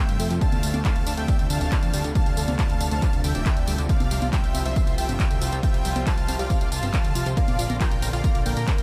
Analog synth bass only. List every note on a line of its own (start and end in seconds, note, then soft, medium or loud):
0.09 0.18 G2 medium
0.20 0.29 F2 loud
0.30 0.40 F2 medium
0.52 0.61 D2 medium
0.63 0.72 D2 loud
0.74 0.83 D2 medium
0.96 1.05 D2 medium
1.07 1.16 D2 loud
1.18 1.27 D2 medium
1.39 1.48 D2 medium
1.50 1.59 D2 loud
1.61 1.70 D1 medium
1.83 1.92 E2 medium
1.94 2.03 D2 loud
2.04 2.13 D2 medium
2.26 2.35 D2 medium
2.37 2.46 D2 loud
2.48 2.57 D2 loud
2.70 2.79 D2 medium
2.81 2.90 D2 loud
2.91 3.00 D2 medium
3.13 3.22 D2 medium
3.24 3.33 D2 loud
3.35 3.44 D1 medium
3.57 3.66 D2 medium
3.68 3.77 D2 loud
3.78 3.87 D2 loud
4.00 4.09 C2 medium
4.11 4.20 C2 loud
4.22 4.31 C2 loud
4.44 4.53 C2 medium
4.55 4.64 C2 loud
4.65 4.74 C2 loud
4.87 4.96 C2 medium
4.98 5.07 C2 loud
5.09 5.18 G1 medium
5.31 5.40 D2 medium
5.41 5.50 C2 loud
5.52 5.61 C2 medium
5.74 5.83 C2 medium
5.85 5.94 C2 loud
5.96 6.05 C2 medium
6.17 6.26 C2 medium
6.28 6.37 C2 loud
6.39 6.48 C2 medium
6.61 6.70 C2 medium
6.72 6.81 C2 loud
6.83 6.92 G1 medium
7.04 7.13 D2 medium
7.15 7.24 C2 loud
7.26 7.35 C2 medium
7.48 7.57 A#1 medium
7.59 7.68 A#1 loud
7.70 7.79 A#1 medium
7.92 8.01 A#1 medium
8.02 8.11 A#1 loud
8.13 8.22 A#1 loud
8.35 8.44 A#1 medium
8.46 8.55 A#1 loud
8.57 8.66 A#2 loud
8.79 8.83 C2 medium